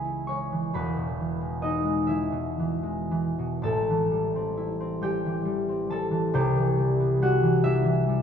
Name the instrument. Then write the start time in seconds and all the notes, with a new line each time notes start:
harp
Already playing: C#2 G#2 E3 G#3 B3 C#4 G#4 B4 C#5 B5 C#6
0.04 E4
0.27 G#3 C#5 C#6
0.52 E3
0.73 E1 E2 B4 B5
0.97 B2
1.20 E3
1.41 G#3
1.62 B3 D#4 D#5
1.84 G#3
2.07 E3 E4 E5
2.32 B2
2.59 E3
2.83 G#3
3.11 E3
3.39 B2
3.62 A1 A2 A4 A5
3.90 E3
4.11 G3
4.36 C4
4.57 E4
4.80 C4
5.02 G3 G4 G5
5.26 E3
5.45 G3
5.69 C4
5.90 G3 A4 A5
6.11 E3
6.34 C2 C3 G4 G5
6.57 E3
6.78 G3
7.00 B3
7.22 G3 F#4 F#5
7.43 E3
7.64 G3 E4 E5
7.85 E3
8.09 G3